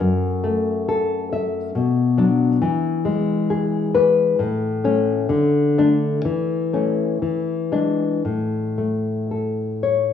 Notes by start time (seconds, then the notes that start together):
0.00 F#2
0.44 A3
0.89 A4
1.33 E5
1.75 B2
2.18 F#3 D4
2.62 E3
3.05 G#3
3.50 G#4
3.95 B4
4.39 A2
4.84 A3 C#4
5.29 D3
5.78 A3 D4
6.25 E3
6.73 A3 C#4
7.22 E3
7.72 G#3 D4
8.25 A2
8.78 A3
9.31 A4
9.83 C#5